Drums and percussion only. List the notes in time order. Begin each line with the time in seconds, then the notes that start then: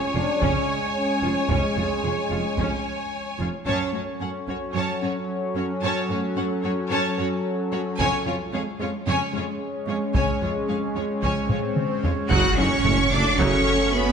0.42 taiko
1.50 taiko
2.58 taiko
3.66 taiko
4.47 taiko
7.98 taiko
10.15 taiko
11.23 taiko
11.49 taiko low-mid
11.77 taiko mid
12.03 taiko low
12.30 taiko
12.85 taiko low-mid
13.39 taiko